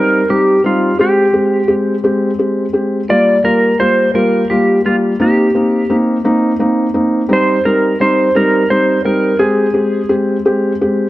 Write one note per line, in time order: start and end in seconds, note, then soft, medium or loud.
0.00 0.20 G3 medium
0.00 0.20 C4 medium
0.00 0.20 D#4 medium
0.00 0.30 A#4 medium
0.29 0.55 G3 medium
0.29 0.55 C4 soft
0.29 0.55 D#4 medium
0.29 0.62 G4 medium
0.64 0.89 G3 medium
0.64 0.89 C4 medium
0.64 0.90 D#4 medium
0.64 1.00 F4 medium
0.98 1.24 G#3 medium
0.98 1.24 C4 medium
0.98 1.24 G4 medium
0.98 1.74 G4 medium
1.33 1.59 G#3 medium
1.33 1.59 C4 soft
1.33 1.59 G4 medium
1.68 1.94 G#3 medium
1.68 1.94 C4 soft
1.68 1.94 G4 medium
2.04 2.29 G#3 medium
2.04 2.29 C4 medium
2.04 2.30 G4 medium
2.38 2.64 G#3 medium
2.38 2.65 C4 soft
2.38 2.65 G4 medium
2.73 3.00 G#3 soft
2.73 2.99 C4 soft
2.73 3.00 G4 medium
3.09 3.35 G3 medium
3.09 3.35 A#3 medium
3.09 3.35 F4 medium
3.09 3.46 D5 medium
3.44 3.70 G3 medium
3.44 3.70 A#3 soft
3.44 3.71 F4 medium
3.44 3.81 A#4 medium
3.79 4.05 G3 medium
3.79 4.05 A#3 soft
3.79 4.06 F4 medium
3.79 4.12 C5 medium
4.14 4.41 G3 medium
4.14 4.41 A#3 medium
4.14 4.41 F4 medium
4.14 4.51 A#4 medium
4.50 4.76 G3 medium
4.50 4.76 A#3 soft
4.50 4.77 F4 medium
4.50 4.86 G4 medium
4.85 5.11 G3 medium
4.85 5.12 A#3 soft
4.85 4.95 F4 medium
4.85 5.12 F4 medium
5.20 5.46 A#3 medium
5.20 5.46 C4 medium
5.20 5.46 D#4 medium
5.20 5.96 G4 medium
5.55 5.81 A#3 medium
5.55 5.81 C4 soft
5.55 5.81 D#4 medium
5.90 6.16 A#3 medium
5.90 6.16 C4 medium
5.90 6.16 D#4 medium
6.25 6.51 A#3 medium
6.25 6.51 C4 medium
6.25 6.51 D#4 medium
6.59 6.86 A#3 medium
6.59 6.86 C4 soft
6.59 6.86 D#4 medium
6.94 7.20 A#3 soft
6.94 7.20 C4 medium
6.94 7.20 D#4 medium
7.29 7.55 G3 medium
7.29 7.56 C4 medium
7.29 7.55 D#4 medium
7.33 7.64 C5 medium
7.65 7.91 G3 medium
7.65 7.91 C4 medium
7.65 7.91 D#4 medium
7.65 7.98 A#4 medium
8.00 8.26 G3 medium
8.00 8.26 C4 medium
8.00 8.26 D#4 medium
8.00 8.36 C5 medium
8.35 8.61 G3 medium
8.35 8.61 C4 medium
8.35 8.61 D#4 medium
8.35 8.72 A#4 medium
8.70 8.96 G3 medium
8.70 8.96 C4 medium
8.70 8.96 D#4 medium
8.70 9.03 C5 medium
9.05 9.30 G3 soft
9.05 9.31 C4 medium
9.05 9.31 D#4 medium
9.05 9.41 A#4 medium
9.39 9.65 G#3 medium
9.39 9.65 C4 medium
9.39 9.65 G4 medium
9.39 10.15 G#4 medium
9.73 10.00 G#3 medium
9.73 10.00 C4 soft
9.73 10.00 G4 medium
10.09 10.36 G#3 medium
10.09 10.36 C4 medium
10.09 10.36 G4 medium
10.45 10.72 G#3 medium
10.45 10.72 C4 medium
10.45 10.72 G4 medium
10.81 11.07 G#3 medium
10.81 11.07 C4 soft
10.81 11.07 G4 medium